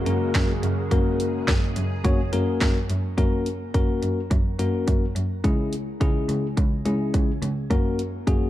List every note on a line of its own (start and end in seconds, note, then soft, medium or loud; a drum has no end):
0.00 3.14 C#3 medium
0.00 3.14 G#3 medium
0.00 3.14 A#3 medium
0.00 0.89 F#4 medium
0.06 0.26 F#2 medium
0.06 0.52 A#3 medium
0.06 0.52 C#4 medium
0.06 0.51 F#4 medium
0.06 0.51 A#4 medium
0.06 closed hi-hat medium
0.35 0.55 F#2 loud
0.35 kick loud
0.35 snare loud
0.35 closed hi-hat medium
0.63 0.83 F#2 loud
0.63 closed hi-hat medium
0.91 1.31 F#2 loud
0.91 1.51 A#3 medium
0.91 1.51 C#4 medium
0.91 1.51 F#4 medium
0.91 3.15 G#4 medium
0.91 1.51 A#4 medium
0.91 kick loud
0.91 closed hi-hat medium
1.20 closed hi-hat medium
1.48 1.68 F#2 loud
1.48 kick loud
1.48 snare loud
1.48 closed hi-hat medium
1.76 1.96 F#2 medium
1.76 closed hi-hat medium
2.05 2.24 F#2 loud
2.05 2.20 A#3 medium
2.05 2.20 C#4 medium
2.05 2.20 F#4 medium
2.05 2.20 C#5 medium
2.05 kick loud
2.05 closed hi-hat medium
2.33 2.53 F#2 loud
2.33 2.78 A#3 medium
2.33 2.78 C#4 medium
2.33 2.78 F#4 medium
2.33 2.78 A#4 medium
2.33 closed hi-hat medium
2.61 2.81 F#2 medium
2.61 kick loud
2.61 snare loud
2.61 closed hi-hat medium
2.89 3.09 F#2 medium
2.89 closed hi-hat medium
3.18 3.57 F#2 loud
3.18 3.48 A#3 medium
3.18 3.48 C#4 medium
3.18 3.48 F#4 medium
3.18 3.48 A#4 medium
3.18 kick loud
3.18 closed hi-hat medium
3.46 closed hi-hat medium
3.74 3.94 F#2 medium
3.74 4.19 A#3 medium
3.74 4.19 C#4 medium
3.74 4.19 F#4 medium
3.74 4.19 A#4 medium
3.74 kick loud
3.74 closed hi-hat medium
4.03 4.22 F#2 medium
4.03 closed hi-hat medium
4.31 4.51 F#2 loud
4.31 kick loud
4.31 closed hi-hat medium
4.59 4.79 F#2 medium
4.59 5.04 A#3 medium
4.59 5.04 C#4 medium
4.59 5.04 F#4 medium
4.59 5.04 A#4 medium
4.59 closed hi-hat medium
4.88 5.08 F#2 medium
4.88 kick loud
4.88 closed hi-hat medium
5.16 5.36 F#2 medium
5.16 closed hi-hat medium
5.44 5.84 C#2 loud
5.44 5.74 G#3 medium
5.44 5.74 C#4 medium
5.44 5.74 E4 medium
5.44 5.74 G#4 medium
5.44 kick loud
5.44 closed hi-hat medium
5.73 closed hi-hat medium
6.01 6.21 C#2 medium
6.01 6.46 G#3 medium
6.01 6.46 C#4 medium
6.01 6.46 E4 medium
6.01 6.46 G#4 medium
6.01 kick loud
6.01 closed hi-hat medium
6.29 6.49 C#2 medium
6.29 closed hi-hat medium
6.57 6.77 C#2 loud
6.57 kick loud
6.57 closed hi-hat medium
6.86 7.05 C#2 medium
6.86 7.31 G#3 medium
6.86 7.31 C#4 medium
6.86 7.31 E4 medium
6.86 7.31 G#4 medium
6.86 closed hi-hat medium
7.14 7.34 C#2 medium
7.14 kick loud
7.14 closed hi-hat medium
7.42 7.62 C#2 medium
7.42 closed hi-hat medium
7.71 8.10 F#2 loud
7.71 8.01 A#3 medium
7.71 8.01 C#4 medium
7.71 8.01 F#4 medium
7.71 8.01 A#4 medium
7.71 kick loud
7.71 closed hi-hat medium
7.99 closed hi-hat medium
8.27 8.47 F#2 medium
8.27 8.50 A#3 medium
8.27 8.50 C#4 medium
8.27 8.50 F#4 medium
8.27 8.50 G#4 medium
8.27 kick loud
8.27 closed hi-hat medium